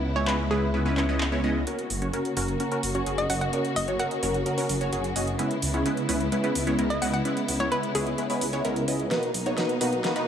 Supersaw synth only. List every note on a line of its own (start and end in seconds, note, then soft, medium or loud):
0.16 0.26 G#3 medium
0.16 0.26 B3 medium
0.16 0.26 C#4 medium
0.16 0.26 E4 medium
0.16 0.26 C#5 medium
0.27 0.48 G#3 medium
0.27 0.48 B3 medium
0.27 0.48 C#4 medium
0.27 0.48 E4 medium
0.27 0.48 B4 loud
0.51 0.71 G#3 medium
0.51 0.71 B3 medium
0.51 0.71 C#4 medium
0.51 0.70 E4 medium
0.51 0.71 B4 loud
0.74 0.84 G#3 medium
0.74 0.84 B3 medium
0.74 0.84 C#4 medium
0.74 0.84 E4 medium
0.74 0.84 B4 medium
0.86 0.95 G#3 medium
0.86 0.95 B3 medium
0.86 0.95 C#4 medium
0.86 0.95 E4 medium
0.86 0.95 B4 loud
0.97 1.06 G#3 medium
0.97 1.06 B3 medium
0.97 1.06 C#4 medium
0.97 1.06 E4 medium
0.97 1.06 C#5 loud
1.09 1.27 G#3 loud
1.09 1.27 B3 medium
1.09 1.27 C#4 medium
1.09 1.27 E4 medium
1.09 1.27 D#5 loud
1.32 1.41 G#3 medium
1.32 1.41 B3 medium
1.32 1.41 C#4 medium
1.32 1.41 E4 medium
1.32 1.41 C#5 medium
1.44 1.64 G#3 loud
1.44 1.64 B3 medium
1.44 1.64 C#4 medium
1.44 1.64 E4 medium
1.44 1.64 D#5 loud
1.67 1.86 C#4 medium
1.67 1.86 F#4 medium
1.67 1.86 A#4 medium
2.02 2.12 C#4 medium
2.02 2.12 F#4 medium
2.02 2.12 C#5 medium
2.14 2.34 C#4 medium
2.14 2.34 F#4 medium
2.14 2.34 A#4 loud
2.37 2.57 C#4 medium
2.37 2.57 F#4 medium
2.37 2.57 A#4 loud
2.60 2.70 C#4 medium
2.60 2.70 F#4 medium
2.60 2.70 A#4 medium
2.72 2.90 C#4 loud
2.72 2.90 F#4 medium
2.72 2.90 A#4 loud
2.95 3.05 C#4 medium
2.95 3.05 F#4 medium
2.95 3.05 C#5 loud
3.06 3.26 C#4 medium
3.06 3.26 F#4 medium
3.06 3.26 G#4 loud
3.30 3.50 C#4 medium
3.30 3.50 F#4 medium
3.30 3.50 D#5 medium
3.53 3.72 C#4 medium
3.53 3.72 F#4 medium
3.53 3.72 A#4 medium
3.88 3.98 C#4 medium
3.88 3.98 F#4 medium
3.88 3.98 C#5 medium
4.00 4.20 C#4 medium
4.00 4.20 F#4 medium
4.00 4.20 A#4 loud
4.23 4.43 C#4 loud
4.23 4.43 F#4 medium
4.23 4.43 A#4 loud
4.46 4.56 C#4 medium
4.46 4.56 F#4 medium
4.46 4.56 A#4 medium
4.58 4.76 C#4 loud
4.58 4.76 F#4 medium
4.58 4.76 A#4 loud
4.81 4.91 C#4 medium
4.81 4.91 F#4 medium
4.81 4.91 C#5 loud
4.93 5.12 C#4 medium
4.93 5.12 F#4 medium
4.93 5.12 G#4 loud
5.16 5.36 C#4 medium
5.16 5.36 F#4 medium
5.16 5.36 D#5 medium
5.39 5.58 G#3 medium
5.39 5.58 B3 medium
5.39 5.58 C#4 medium
5.39 5.58 E4 medium
5.39 5.58 B4 medium
5.74 5.84 G#3 medium
5.74 5.84 B3 medium
5.74 5.84 C#4 medium
5.74 5.84 E4 medium
5.74 5.84 C#5 medium
5.86 6.06 G#3 medium
5.86 6.06 B3 medium
5.86 6.06 C#4 medium
5.86 6.06 E4 medium
5.86 6.06 B4 loud
6.09 6.29 G#3 loud
6.09 6.29 B3 medium
6.09 6.29 C#4 medium
6.09 6.29 E4 medium
6.09 6.29 B4 loud
6.32 6.42 G#3 medium
6.32 6.42 B3 medium
6.32 6.42 C#4 medium
6.32 6.42 E4 medium
6.32 6.42 B4 medium
6.44 6.62 G#3 loud
6.44 6.62 B3 medium
6.44 6.62 C#4 medium
6.44 6.62 E4 medium
6.44 6.62 B4 loud
6.67 6.77 G#3 loud
6.67 6.77 B3 medium
6.67 6.77 C#4 medium
6.67 6.77 E4 medium
6.67 6.77 C#5 loud
6.79 6.98 G#3 medium
6.79 6.98 B3 medium
6.79 6.98 C#4 medium
6.79 6.98 E4 medium
6.79 6.98 A#4 loud
7.02 7.22 G#3 medium
7.02 7.22 B3 medium
7.02 7.22 C#4 medium
7.02 7.22 E4 medium
7.02 7.22 D#5 medium
7.25 7.44 G#3 medium
7.25 7.44 B3 medium
7.25 7.44 C#4 medium
7.25 7.44 E4 medium
7.25 7.44 B4 medium
7.60 7.70 G#3 medium
7.60 7.70 B3 medium
7.60 7.70 C#4 medium
7.60 7.70 E4 medium
7.60 7.70 C#5 medium
7.72 7.92 G#3 medium
7.72 7.92 B3 medium
7.72 7.92 C#4 medium
7.72 7.92 E4 medium
7.72 7.92 B4 loud
7.95 8.15 G#3 loud
7.95 8.15 B3 medium
7.95 8.15 C#4 loud
7.95 8.15 E4 medium
7.95 8.15 B4 loud
8.18 8.28 G#3 medium
8.18 8.28 B3 medium
8.18 8.28 C#4 medium
8.18 8.28 E4 medium
8.18 8.28 B4 medium
8.30 8.48 G#3 loud
8.30 8.48 B3 medium
8.30 8.48 C#4 medium
8.30 8.48 E4 medium
8.30 8.48 B4 loud
8.53 8.63 G#3 loud
8.53 8.63 B3 medium
8.53 8.63 C#4 medium
8.53 8.63 E4 medium
8.53 8.63 C#5 loud
8.65 8.84 G#3 medium
8.65 8.84 B3 medium
8.65 8.84 C#4 medium
8.65 8.84 E4 medium
8.65 8.84 A#4 loud
8.88 9.08 G#3 medium
8.88 9.08 B3 medium
8.88 9.08 C#4 medium
8.88 9.08 E4 medium
8.88 9.08 D#5 medium
9.11 9.30 A#3 medium
9.11 9.30 B3 medium
9.11 9.30 D#4 medium
9.11 9.30 F#4 medium
9.11 9.30 B4 medium
9.46 9.56 A#3 medium
9.46 9.56 B3 medium
9.46 9.56 D#4 medium
9.46 9.56 F#4 medium
9.46 9.56 C#5 medium
9.58 9.78 A#3 medium
9.58 9.78 B3 medium
9.58 9.78 D#4 medium
9.58 9.78 F#4 medium
9.58 9.78 B4 loud
9.81 10.01 A#3 loud
9.81 10.01 B3 medium
9.81 10.01 D#4 medium
9.81 10.01 F#4 medium
9.81 10.01 B4 loud
10.04 10.14 A#3 medium
10.04 10.14 B3 medium
10.04 10.14 D#4 medium
10.04 10.14 F#4 medium
10.04 10.14 B4 medium
10.16 10.28 A#3 loud
10.16 10.28 B3 medium
10.16 10.28 D#4 medium
10.16 10.28 F#4 medium
10.16 10.28 B4 loud